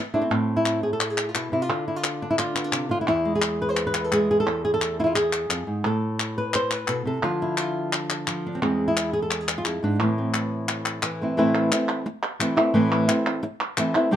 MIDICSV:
0, 0, Header, 1, 4, 480
1, 0, Start_track
1, 0, Key_signature, 0, "minor"
1, 0, Tempo, 345026
1, 434, Time_signature, 4, 2, 24, 8
1, 19701, End_track
2, 0, Start_track
2, 0, Title_t, "Nylon-string guitar"
2, 0, Program_c, 0, 24
2, 192, Note_on_c, 0, 62, 79
2, 192, Note_on_c, 0, 64, 53
2, 205, Note_on_c, 0, 60, 45
2, 213, Note_on_c, 0, 57, 39
2, 283, Note_off_c, 0, 60, 0
2, 299, Note_on_c, 0, 60, 74
2, 313, Note_off_c, 0, 62, 0
2, 410, Note_off_c, 0, 60, 0
2, 423, Note_off_c, 0, 64, 0
2, 426, Note_on_c, 0, 45, 62
2, 428, Note_on_c, 0, 60, 77
2, 433, Note_off_c, 0, 57, 0
2, 787, Note_on_c, 0, 64, 79
2, 1149, Note_off_c, 0, 64, 0
2, 1157, Note_on_c, 0, 68, 72
2, 1269, Note_off_c, 0, 60, 0
2, 1274, Note_off_c, 0, 68, 0
2, 1293, Note_on_c, 0, 69, 75
2, 1530, Note_off_c, 0, 69, 0
2, 1530, Note_on_c, 0, 68, 67
2, 1790, Note_off_c, 0, 68, 0
2, 1790, Note_on_c, 0, 65, 75
2, 1867, Note_off_c, 0, 45, 0
2, 1873, Note_on_c, 0, 47, 48
2, 1897, Note_off_c, 0, 65, 0
2, 1897, Note_on_c, 0, 64, 80
2, 2108, Note_off_c, 0, 47, 0
2, 2112, Note_off_c, 0, 64, 0
2, 2114, Note_on_c, 0, 48, 51
2, 2128, Note_on_c, 0, 64, 69
2, 2252, Note_off_c, 0, 64, 0
2, 2252, Note_on_c, 0, 65, 81
2, 2352, Note_on_c, 0, 50, 60
2, 2353, Note_off_c, 0, 48, 0
2, 2603, Note_off_c, 0, 65, 0
2, 2612, Note_on_c, 0, 64, 67
2, 2730, Note_off_c, 0, 64, 0
2, 2730, Note_on_c, 0, 65, 78
2, 3092, Note_on_c, 0, 62, 75
2, 3201, Note_off_c, 0, 65, 0
2, 3206, Note_on_c, 0, 64, 79
2, 3320, Note_off_c, 0, 64, 0
2, 3325, Note_on_c, 0, 65, 78
2, 3541, Note_off_c, 0, 62, 0
2, 3547, Note_on_c, 0, 59, 39
2, 3676, Note_off_c, 0, 59, 0
2, 3676, Note_on_c, 0, 62, 32
2, 3778, Note_on_c, 0, 48, 44
2, 4008, Note_off_c, 0, 50, 0
2, 4024, Note_on_c, 0, 50, 55
2, 4027, Note_off_c, 0, 48, 0
2, 4033, Note_off_c, 0, 65, 0
2, 4050, Note_on_c, 0, 65, 85
2, 4162, Note_off_c, 0, 65, 0
2, 4188, Note_on_c, 0, 64, 72
2, 4270, Note_off_c, 0, 50, 0
2, 4273, Note_off_c, 0, 64, 0
2, 4277, Note_off_c, 0, 62, 0
2, 4278, Note_on_c, 0, 40, 59
2, 4289, Note_on_c, 0, 64, 87
2, 4523, Note_on_c, 0, 56, 44
2, 4643, Note_off_c, 0, 64, 0
2, 4666, Note_on_c, 0, 68, 84
2, 5012, Note_off_c, 0, 68, 0
2, 5031, Note_on_c, 0, 71, 86
2, 5131, Note_off_c, 0, 71, 0
2, 5131, Note_on_c, 0, 72, 87
2, 5365, Note_off_c, 0, 72, 0
2, 5381, Note_on_c, 0, 71, 77
2, 5486, Note_on_c, 0, 64, 40
2, 5625, Note_off_c, 0, 71, 0
2, 5625, Note_on_c, 0, 69, 78
2, 5708, Note_off_c, 0, 56, 0
2, 5725, Note_on_c, 0, 56, 49
2, 5733, Note_off_c, 0, 69, 0
2, 5752, Note_on_c, 0, 68, 85
2, 5977, Note_off_c, 0, 68, 0
2, 5992, Note_on_c, 0, 68, 84
2, 6097, Note_off_c, 0, 68, 0
2, 6122, Note_on_c, 0, 69, 85
2, 6175, Note_off_c, 0, 56, 0
2, 6188, Note_off_c, 0, 40, 0
2, 6205, Note_on_c, 0, 40, 58
2, 6459, Note_off_c, 0, 69, 0
2, 6464, Note_on_c, 0, 68, 80
2, 6574, Note_off_c, 0, 68, 0
2, 6591, Note_on_c, 0, 69, 84
2, 6939, Note_off_c, 0, 69, 0
2, 6943, Note_off_c, 0, 64, 0
2, 6948, Note_on_c, 0, 65, 64
2, 6954, Note_on_c, 0, 64, 79
2, 6982, Note_off_c, 0, 65, 0
2, 6993, Note_off_c, 0, 64, 0
2, 7010, Note_on_c, 0, 64, 72
2, 7044, Note_on_c, 0, 65, 70
2, 7160, Note_off_c, 0, 64, 0
2, 7165, Note_off_c, 0, 65, 0
2, 7165, Note_on_c, 0, 68, 85
2, 7635, Note_off_c, 0, 40, 0
2, 7640, Note_on_c, 0, 41, 45
2, 7882, Note_off_c, 0, 41, 0
2, 7887, Note_on_c, 0, 44, 54
2, 8124, Note_on_c, 0, 45, 59
2, 8129, Note_off_c, 0, 44, 0
2, 8129, Note_off_c, 0, 68, 0
2, 8155, Note_on_c, 0, 69, 83
2, 8865, Note_off_c, 0, 69, 0
2, 8873, Note_on_c, 0, 71, 77
2, 9104, Note_off_c, 0, 71, 0
2, 9118, Note_on_c, 0, 72, 88
2, 9366, Note_off_c, 0, 72, 0
2, 9366, Note_on_c, 0, 71, 84
2, 9569, Note_off_c, 0, 45, 0
2, 9575, Note_on_c, 0, 47, 48
2, 9588, Note_off_c, 0, 71, 0
2, 9588, Note_on_c, 0, 69, 80
2, 9809, Note_off_c, 0, 47, 0
2, 9814, Note_on_c, 0, 48, 52
2, 9822, Note_off_c, 0, 69, 0
2, 9837, Note_on_c, 0, 69, 80
2, 10050, Note_off_c, 0, 48, 0
2, 10055, Note_on_c, 0, 50, 64
2, 10066, Note_on_c, 0, 53, 42
2, 10067, Note_off_c, 0, 69, 0
2, 10074, Note_on_c, 0, 65, 81
2, 10322, Note_on_c, 0, 64, 64
2, 10547, Note_off_c, 0, 65, 0
2, 10565, Note_on_c, 0, 65, 72
2, 11032, Note_off_c, 0, 64, 0
2, 11494, Note_off_c, 0, 53, 0
2, 11511, Note_on_c, 0, 53, 48
2, 11755, Note_off_c, 0, 65, 0
2, 11777, Note_on_c, 0, 62, 72
2, 11894, Note_on_c, 0, 60, 68
2, 11954, Note_off_c, 0, 50, 0
2, 11958, Note_off_c, 0, 53, 0
2, 11974, Note_off_c, 0, 60, 0
2, 11993, Note_on_c, 0, 40, 60
2, 11994, Note_on_c, 0, 60, 81
2, 12000, Note_off_c, 0, 62, 0
2, 12003, Note_on_c, 0, 56, 40
2, 12347, Note_off_c, 0, 60, 0
2, 12350, Note_on_c, 0, 64, 80
2, 12701, Note_off_c, 0, 64, 0
2, 12707, Note_on_c, 0, 68, 81
2, 12825, Note_off_c, 0, 68, 0
2, 12833, Note_on_c, 0, 69, 75
2, 13085, Note_off_c, 0, 69, 0
2, 13085, Note_on_c, 0, 68, 71
2, 13325, Note_on_c, 0, 65, 75
2, 13425, Note_off_c, 0, 40, 0
2, 13431, Note_on_c, 0, 41, 48
2, 13435, Note_off_c, 0, 65, 0
2, 13440, Note_off_c, 0, 68, 0
2, 13440, Note_on_c, 0, 64, 76
2, 13665, Note_off_c, 0, 41, 0
2, 13671, Note_on_c, 0, 44, 54
2, 13686, Note_on_c, 0, 62, 70
2, 13885, Note_off_c, 0, 56, 0
2, 13907, Note_off_c, 0, 44, 0
2, 13911, Note_on_c, 0, 45, 66
2, 13912, Note_off_c, 0, 64, 0
2, 13915, Note_off_c, 0, 62, 0
2, 13923, Note_on_c, 0, 52, 42
2, 13931, Note_on_c, 0, 64, 70
2, 13935, Note_on_c, 0, 57, 41
2, 13941, Note_on_c, 0, 60, 44
2, 14147, Note_off_c, 0, 60, 0
2, 14164, Note_on_c, 0, 60, 43
2, 15329, Note_off_c, 0, 52, 0
2, 15345, Note_on_c, 0, 52, 51
2, 15584, Note_off_c, 0, 57, 0
2, 15591, Note_off_c, 0, 60, 0
2, 15594, Note_off_c, 0, 64, 0
2, 15601, Note_on_c, 0, 57, 40
2, 15610, Note_on_c, 0, 60, 40
2, 15623, Note_on_c, 0, 64, 40
2, 15793, Note_off_c, 0, 52, 0
2, 15801, Note_off_c, 0, 57, 0
2, 15803, Note_off_c, 0, 45, 0
2, 15806, Note_off_c, 0, 60, 0
2, 15819, Note_on_c, 0, 45, 69
2, 15826, Note_off_c, 0, 64, 0
2, 15826, Note_on_c, 0, 52, 78
2, 15830, Note_on_c, 0, 57, 78
2, 15841, Note_on_c, 0, 60, 80
2, 15843, Note_on_c, 0, 64, 91
2, 16287, Note_off_c, 0, 64, 0
2, 16288, Note_off_c, 0, 45, 0
2, 16292, Note_off_c, 0, 52, 0
2, 16294, Note_off_c, 0, 57, 0
2, 16295, Note_off_c, 0, 60, 0
2, 16303, Note_on_c, 0, 64, 51
2, 16311, Note_on_c, 0, 60, 54
2, 16322, Note_on_c, 0, 57, 41
2, 16764, Note_off_c, 0, 60, 0
2, 16765, Note_off_c, 0, 57, 0
2, 16769, Note_off_c, 0, 64, 0
2, 17245, Note_on_c, 0, 52, 50
2, 17256, Note_on_c, 0, 60, 58
2, 17257, Note_on_c, 0, 57, 51
2, 17267, Note_on_c, 0, 64, 52
2, 17463, Note_off_c, 0, 64, 0
2, 17476, Note_off_c, 0, 60, 0
2, 17479, Note_off_c, 0, 52, 0
2, 17480, Note_on_c, 0, 64, 56
2, 17484, Note_off_c, 0, 57, 0
2, 17493, Note_on_c, 0, 60, 52
2, 17501, Note_on_c, 0, 57, 50
2, 17715, Note_off_c, 0, 64, 0
2, 17716, Note_off_c, 0, 57, 0
2, 17717, Note_off_c, 0, 60, 0
2, 17721, Note_on_c, 0, 45, 77
2, 17723, Note_on_c, 0, 52, 90
2, 17733, Note_on_c, 0, 57, 78
2, 17734, Note_on_c, 0, 60, 89
2, 17742, Note_on_c, 0, 64, 80
2, 18177, Note_off_c, 0, 64, 0
2, 18187, Note_off_c, 0, 60, 0
2, 18194, Note_off_c, 0, 45, 0
2, 18194, Note_on_c, 0, 64, 56
2, 18195, Note_off_c, 0, 52, 0
2, 18200, Note_off_c, 0, 57, 0
2, 18203, Note_on_c, 0, 60, 58
2, 18216, Note_on_c, 0, 57, 44
2, 18665, Note_off_c, 0, 57, 0
2, 18669, Note_off_c, 0, 64, 0
2, 18670, Note_off_c, 0, 60, 0
2, 19161, Note_on_c, 0, 52, 57
2, 19169, Note_on_c, 0, 57, 59
2, 19173, Note_on_c, 0, 60, 62
2, 19184, Note_on_c, 0, 64, 59
2, 19391, Note_off_c, 0, 52, 0
2, 19394, Note_off_c, 0, 64, 0
2, 19395, Note_off_c, 0, 57, 0
2, 19397, Note_off_c, 0, 60, 0
2, 19411, Note_on_c, 0, 64, 58
2, 19420, Note_on_c, 0, 60, 49
2, 19428, Note_on_c, 0, 57, 42
2, 19632, Note_off_c, 0, 60, 0
2, 19632, Note_on_c, 0, 43, 87
2, 19635, Note_off_c, 0, 64, 0
2, 19641, Note_on_c, 0, 48, 80
2, 19643, Note_off_c, 0, 57, 0
2, 19646, Note_on_c, 0, 55, 87
2, 19648, Note_on_c, 0, 60, 88
2, 19654, Note_on_c, 0, 62, 86
2, 19701, Note_off_c, 0, 43, 0
2, 19701, Note_off_c, 0, 48, 0
2, 19701, Note_off_c, 0, 55, 0
2, 19701, Note_off_c, 0, 60, 0
2, 19701, Note_off_c, 0, 62, 0
2, 19701, End_track
3, 0, Start_track
3, 0, Title_t, "Muted nylon-string guitar strokes"
3, 16776, Note_on_c, 9, 29, 70
3, 16915, Note_off_c, 9, 29, 0
3, 18677, Note_on_c, 9, 29, 66
3, 18816, Note_off_c, 9, 29, 0
3, 19701, End_track
4, 0, Start_track
4, 0, Title_t, "Drums"
4, 914, Note_on_c, 9, 39, 76
4, 1053, Note_off_c, 9, 39, 0
4, 1398, Note_on_c, 9, 39, 74
4, 1537, Note_off_c, 9, 39, 0
4, 1636, Note_on_c, 9, 39, 71
4, 1775, Note_off_c, 9, 39, 0
4, 1878, Note_on_c, 9, 39, 76
4, 2017, Note_off_c, 9, 39, 0
4, 2835, Note_on_c, 9, 39, 76
4, 2974, Note_off_c, 9, 39, 0
4, 3319, Note_on_c, 9, 39, 71
4, 3458, Note_off_c, 9, 39, 0
4, 3562, Note_on_c, 9, 39, 76
4, 3701, Note_off_c, 9, 39, 0
4, 3792, Note_on_c, 9, 39, 74
4, 3931, Note_off_c, 9, 39, 0
4, 4756, Note_on_c, 9, 39, 73
4, 4895, Note_off_c, 9, 39, 0
4, 5241, Note_on_c, 9, 39, 73
4, 5381, Note_off_c, 9, 39, 0
4, 5486, Note_on_c, 9, 39, 76
4, 5625, Note_off_c, 9, 39, 0
4, 5734, Note_on_c, 9, 39, 77
4, 5873, Note_off_c, 9, 39, 0
4, 6700, Note_on_c, 9, 39, 77
4, 6839, Note_off_c, 9, 39, 0
4, 7176, Note_on_c, 9, 39, 68
4, 7315, Note_off_c, 9, 39, 0
4, 7411, Note_on_c, 9, 39, 78
4, 7551, Note_off_c, 9, 39, 0
4, 7655, Note_on_c, 9, 39, 76
4, 7794, Note_off_c, 9, 39, 0
4, 8621, Note_on_c, 9, 39, 81
4, 8760, Note_off_c, 9, 39, 0
4, 9092, Note_on_c, 9, 39, 71
4, 9232, Note_off_c, 9, 39, 0
4, 9335, Note_on_c, 9, 39, 77
4, 9474, Note_off_c, 9, 39, 0
4, 9566, Note_on_c, 9, 39, 74
4, 9705, Note_off_c, 9, 39, 0
4, 10538, Note_on_c, 9, 39, 79
4, 10677, Note_off_c, 9, 39, 0
4, 11028, Note_on_c, 9, 39, 71
4, 11168, Note_off_c, 9, 39, 0
4, 11269, Note_on_c, 9, 39, 69
4, 11408, Note_off_c, 9, 39, 0
4, 11509, Note_on_c, 9, 39, 76
4, 11648, Note_off_c, 9, 39, 0
4, 12478, Note_on_c, 9, 39, 83
4, 12617, Note_off_c, 9, 39, 0
4, 12950, Note_on_c, 9, 39, 71
4, 13089, Note_off_c, 9, 39, 0
4, 13191, Note_on_c, 9, 39, 78
4, 13330, Note_off_c, 9, 39, 0
4, 13428, Note_on_c, 9, 39, 74
4, 13567, Note_off_c, 9, 39, 0
4, 14384, Note_on_c, 9, 39, 79
4, 14523, Note_off_c, 9, 39, 0
4, 14866, Note_on_c, 9, 39, 76
4, 15006, Note_off_c, 9, 39, 0
4, 15102, Note_on_c, 9, 39, 76
4, 15241, Note_off_c, 9, 39, 0
4, 15339, Note_on_c, 9, 39, 74
4, 15478, Note_off_c, 9, 39, 0
4, 16304, Note_on_c, 9, 39, 89
4, 16443, Note_off_c, 9, 39, 0
4, 17259, Note_on_c, 9, 39, 83
4, 17398, Note_off_c, 9, 39, 0
4, 18213, Note_on_c, 9, 39, 89
4, 18352, Note_off_c, 9, 39, 0
4, 19162, Note_on_c, 9, 39, 84
4, 19301, Note_off_c, 9, 39, 0
4, 19701, End_track
0, 0, End_of_file